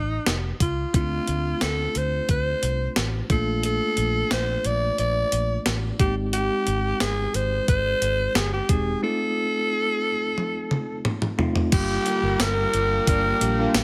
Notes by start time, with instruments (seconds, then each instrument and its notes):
Already playing: fingered electric bass A1, alto saxophone D#4
0.26 fingered electric bass F1, snare, closed hi-hat
0.60 fingered electric bass C#2, alto saxophone F4, kick, closed hi-hat
0.94 fingered electric bass D2, tine electric piano A3 C4 D4 E4, alto saxophone F4, kick, closed hi-hat
1.01 tine electric piano F4
1.27 fingered electric bass D2, closed hi-hat
1.61 fingered electric bass D2, alto saxophone A4, snare, closed hi-hat
1.95 fingered electric bass D2, alto saxophone C5, closed hi-hat
2.29 fingered electric bass D2, alto saxophone C5, kick, closed hi-hat
2.63 fingered electric bass C2, closed hi-hat
2.96 fingered electric bass A1, snare, closed hi-hat
3.29 fingered electric bass A#1, tine electric piano A3 A#3 D4 F4, alto saxophone A4, kick, closed hi-hat
3.63 alto saxophone A4, closed hi-hat
3.97 fingered electric bass A#1, closed hi-hat
4.31 fingered electric bass A#1, alto saxophone C5, snare, closed hi-hat
4.64 fingered electric bass A#1, alto saxophone D5, closed hi-hat
4.98 fingered electric bass A#1, alto saxophone D5, closed hi-hat
5.32 fingered electric bass A#1, closed hi-hat
5.66 fingered electric bass A1, snare, closed hi-hat
5.99 fingered electric bass G#1, tine electric piano G#3 A#3 D#4 G4, alto saxophone G4, kick, closed hi-hat
6.06 tine electric piano C4
6.33 alto saxophone G4, closed hi-hat
6.67 fingered electric bass G#1, closed hi-hat
7.00 fingered electric bass G#1, alto saxophone G#4, snare, closed hi-hat
7.34 fingered electric bass G#1, alto saxophone C5, closed hi-hat
7.68 fingered electric bass G#1, alto saxophone C5, kick, closed hi-hat
8.02 fingered electric bass G#1, closed hi-hat
8.35 fingered electric bass G1, alto saxophone G#4, snare, closed hi-hat
8.53 alto saxophone G4
8.69 fingered electric bass E1, tine electric piano G#3 C4 D#4 G4, alto saxophone G#4, kick, closed hi-hat
9.02 tine electric piano A3 C4 D#4 F4, alto saxophone A4
10.38 high tom
10.71 mid tom
11.05 mid tom
11.22 mid tom
11.38 tine electric piano A3 C4 D#4 F4, floor tom
11.56 floor tom
11.72 fingered electric bass G1, overdriven electric guitar G2 D3 G3, tine electric piano G3 A#3 D4 F4, analog synth pad A#3 F5 G5 D6, alto saxophone G4, kick, closed hi-hat, crash
12.06 analog polysynth A#3 D4 G4, closed hi-hat
12.23 fingered electric bass G1, analog polysynth F4 G4 A#4
12.40 fingered electric bass G1, alto saxophone A#4, snare, closed hi-hat, tambourine
12.73 fingered electric bass G1, overdriven electric guitar D3 G3, closed hi-hat
13.07 fingered electric bass G1, overdriven electric guitar G2 D3 G3, analog polysynth A#3 D4 F4, alto saxophone A#4, kick, closed hi-hat
13.24 analog polysynth A#3 D4 G4
13.41 fingered electric bass A#1, tine electric piano G3 A#3 D4 G4, closed hi-hat
13.58 analog polysynth A#3 D4 F4
13.74 fingered electric bass A#1, snare, closed hi-hat, tambourine